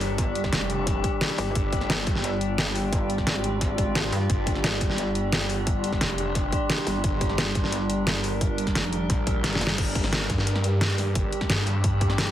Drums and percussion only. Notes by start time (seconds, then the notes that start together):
0.01 open hi-hat
0.18 kick, closed hi-hat
0.35 closed hi-hat
0.44 kick, snare
0.53 snare, closed hi-hat
0.61 snare
0.70 closed hi-hat
0.87 kick, snare, closed hi-hat
1.04 kick, closed hi-hat
1.21 snare, closed hi-hat
1.30 snare, closed hi-hat
1.38 open hi-hat
1.55 kick, closed hi-hat
1.73 kick, closed hi-hat
1.81 snare
1.90 snare, closed hi-hat
2.07 kick, closed hi-hat
2.15 snare
2.24 closed hi-hat
2.41 closed hi-hat
2.58 snare, closed hi-hat
2.67 closed hi-hat
2.75 open hi-hat
2.93 kick, closed hi-hat
3.10 closed hi-hat
3.18 kick, snare
3.27 snare, closed hi-hat
3.35 snare
3.44 closed hi-hat
3.61 kick, snare, closed hi-hat
3.78 kick, closed hi-hat
3.95 snare, closed hi-hat
4.04 snare, closed hi-hat
4.12 open hi-hat
4.30 kick, closed hi-hat
4.47 kick, closed hi-hat
4.55 snare
4.64 snare, closed hi-hat
4.81 kick, closed hi-hat
4.90 snare
4.98 closed hi-hat
5.15 closed hi-hat
5.32 snare, closed hi-hat
5.41 closed hi-hat
5.50 open hi-hat
5.67 kick, closed hi-hat
5.84 closed hi-hat
5.92 kick, snare
6.01 snare, closed hi-hat
6.10 snare
6.18 closed hi-hat
6.35 kick, snare, closed hi-hat
6.52 kick, closed hi-hat
6.70 snare, closed hi-hat
6.78 snare, closed hi-hat
6.87 open hi-hat
7.04 kick, closed hi-hat
7.21 kick, closed hi-hat
7.30 snare
7.38 snare, closed hi-hat
7.55 kick, closed hi-hat
7.64 snare
7.72 closed hi-hat
7.90 closed hi-hat
8.07 snare, closed hi-hat
8.15 closed hi-hat
8.24 open hi-hat
8.41 kick, closed hi-hat
8.58 closed hi-hat
8.67 kick, snare, closed hi-hat
8.75 snare, closed hi-hat
8.84 snare
8.93 closed hi-hat
9.10 kick, snare, closed hi-hat
9.27 kick, closed hi-hat
9.44 snare, closed hi-hat
9.53 snare, closed hi-hat
9.61 open hi-hat
9.67 snare, closed hi-hat
9.78 kick, closed hi-hat, crash
9.95 kick, closed hi-hat
10.04 snare
10.13 snare, closed hi-hat
10.30 kick, closed hi-hat
10.38 snare
10.47 closed hi-hat
10.56 snare
10.64 closed hi-hat
10.81 snare, closed hi-hat
10.90 closed hi-hat
10.98 snare, open hi-hat
11.15 kick, closed hi-hat
11.33 closed hi-hat
11.41 kick, snare
11.50 snare, closed hi-hat
11.67 closed hi-hat
11.84 kick, closed hi-hat
12.01 kick, closed hi-hat
12.10 snare
12.18 snare, closed hi-hat
12.27 snare, closed hi-hat